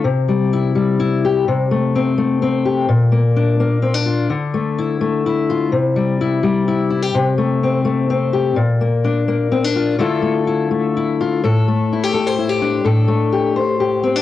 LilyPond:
\new Staff \with { instrumentName = "Steel-string acoustic guitar" } { \time 3/4 \key a \phrygian \tempo 4 = 127 << { r4 e'4 e'8 g'8 | r4 c'4 c'8 g'8 | r4 d'4 c'16 d'16 f'8 | r4 e'4 e'8 f'8 |
r4 e'4 e'8 e'16 g'16 | r4 c'4 c'8 g'8 | r4 d'4 c'16 d'16 f'8 | <a e' f' a'>4 e'4 e'8 f'8 |
a'4 e'16 g'16 a'16 c''16 e'16 g'16 d'8 | a'4 g'8 c''8 g'8 c'16 d'16 | } \\ { c8 g4 g4. | c8 a4 a4. | bes,8 bes4 bes4. | d8 a4 a4. |
c8 g4 g4. | c8 a4 a4. | bes,8 bes4 bes4. | d8 a4 a4. |
a,8 a2~ a8 | a,8 a2~ a8 | } >> }